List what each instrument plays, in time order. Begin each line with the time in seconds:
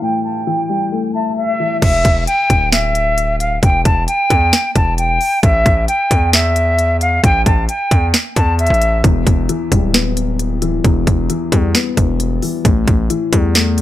Already playing: felt piano A2 E3 G3 A3
0.02 felt piano A2, flute G5
0.24 flute A5
0.47 felt piano E3, flute G5
0.70 felt piano G3
0.92 felt piano A3
1.14 flute E5 A5
1.37 flute E5
1.60 felt piano E3
1.81 808-style bass E1, flute E5, kick, closed hi-hat, crash
2.05 808-style bass E1, kick, closed hi-hat
2.27 flute G5, closed hi-hat
2.50 808-style bass D1, kick, closed hi-hat
2.72 flute E5, snare, closed hi-hat
2.95 closed hi-hat
3.18 closed hi-hat
3.40 flute F5, closed hi-hat
3.63 808-style bass E1, flute G5, kick, closed hi-hat
3.85 808-style bass E1, flute A5, kick, closed hi-hat
4.08 flute G5, closed hi-hat
4.30 808-style bass E2, kick, closed hi-hat
4.53 snare, closed hi-hat
4.75 808-style bass E1, flute A5, kick, closed hi-hat
4.98 flute G5, closed hi-hat
5.21 open hi-hat
5.43 808-style bass A1, flute E5, kick, closed hi-hat
5.66 808-style bass A1, kick, closed hi-hat
5.88 flute G5, closed hi-hat
6.11 808-style bass E2, kick, closed hi-hat
6.33 flute E5, snare, closed hi-hat
6.56 closed hi-hat
6.79 closed hi-hat
7.01 flute F5, closed hi-hat
7.24 808-style bass A1, flute G5, kick, closed hi-hat
7.46 808-style bass A1, flute A5, kick, closed hi-hat
7.69 flute G5, closed hi-hat
7.91 808-style bass E2, kick, closed hi-hat
8.14 snare, closed hi-hat
8.36 808-style bass E2, flute A5, kick, closed hi-hat
8.59 flute E5, closed hi-hat
8.66 808-style bass A1, closed hi-hat
8.74 closed hi-hat
8.82 closed hi-hat
9.04 808-style bass E1, felt piano E2, kick, closed hi-hat
9.27 808-style bass E1, kick, closed hi-hat
9.49 felt piano E3, closed hi-hat
9.72 808-style bass D1, felt piano G3, kick, closed hi-hat
9.94 felt piano B3, snare, closed hi-hat
10.17 closed hi-hat
10.39 closed hi-hat
10.62 felt piano E3, closed hi-hat
10.85 808-style bass E1, felt piano E2, kick, closed hi-hat
11.07 808-style bass E1, kick, closed hi-hat
11.30 felt piano E3, closed hi-hat
11.52 808-style bass E2, felt piano G3, kick, closed hi-hat
11.75 felt piano B3, snare, closed hi-hat
11.97 808-style bass E1, kick, closed hi-hat
12.20 closed hi-hat
12.42 felt piano E3, open hi-hat
12.65 808-style bass A1, felt piano A2, kick, closed hi-hat
12.88 808-style bass A1, kick, closed hi-hat
13.10 felt piano E3, closed hi-hat
13.33 808-style bass E2, felt piano G3, kick, closed hi-hat
13.55 felt piano A3, snare, closed hi-hat
13.78 closed hi-hat